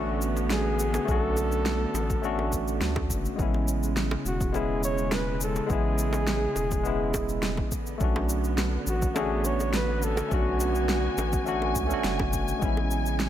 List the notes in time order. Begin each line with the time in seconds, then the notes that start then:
Already playing: A1 D3 A3 B3 C#4 D4 F#4
0.22 shaker
0.37 high bongo, shaker
0.50 G#4, snare, shaker
0.79 shaker
0.94 high bongo, shaker
1.05 B1 A3 C#4, kick, shaker
1.09 D4 F#4 A4
1.37 high bongo, shaker
1.52 shaker
1.66 snare, shaker
1.94 A1, high bongo, shaker
2.10 kick, shaker
2.22 A3 C#4 D4 F#4, shaker
2.39 high bongo
2.52 kick, shaker
2.68 shaker
2.81 D2, snare, shaker
2.96 kick, high bongo
3.10 F#1, kick, shaker
3.25 shaker
3.36 A1 C#3 G#3 B3, kick, shaker
3.40 C#4 E4
3.54 high bongo
3.68 shaker
3.83 shaker
3.97 snare, shaker
4.11 high bongo
4.25 E1 F#4, shaker
4.41 kick, shaker
4.52 G#3 B3 C#4 E4 G#4, high bongo, shaker
4.83 C#5, shaker
4.98 shaker
5.11 B4, snare, high bongo, shaker
5.41 A4, shaker
5.56 high bongo, shaker
5.66 A1 G#3 B3, kick, shaker
5.71 C#4 E4 G#4
5.98 shaker
6.13 high bongo, shaker
6.27 snare, shaker
6.56 E1, high bongo, shaker
6.71 kick, shaker
6.84 G#3 B3 C#4 E4, shaker
7.14 kick, high bongo, shaker
7.29 shaker
7.43 snare, shaker
7.57 kick, high bongo
7.71 D3 B3, kick, shaker
7.87 shaker
7.98 B1 A3 C#4, kick, shaker
8.02 D4 F#4
8.16 high bongo
8.29 shaker
8.44 shaker
8.58 snare, high bongo, shaker
8.87 A1 F#4, shaker
9.02 kick, shaker
9.14 A3 C#4 D4 F#4 G#4, high bongo, shaker
9.45 C#5, shaker
9.60 high bongo, shaker
9.73 B4, snare, shaker
10.02 A4 G#5, shaker
10.17 high bongo, shaker
10.28 B1 A3 C#4, kick, shaker
10.32 D4 F#4
10.60 high bongo, shaker
10.75 shaker
10.89 snare, shaker
11.18 A1, high bongo, shaker
11.33 kick, shaker
11.45 A3 C#4 D4 F#4, shaker
11.62 high bongo
11.75 C#2, kick, shaker
11.87 A3 C#4, shaker
11.92 D4 F#4
12.04 F#1, snare, shaker
12.19 kick, high bongo
12.33 kick, shaker
12.48 shaker
12.59 A1 C#3 G#3 B3, kick, shaker
12.63 C#4 E4
12.77 high bongo
12.91 shaker
13.06 shaker
13.20 snare, shaker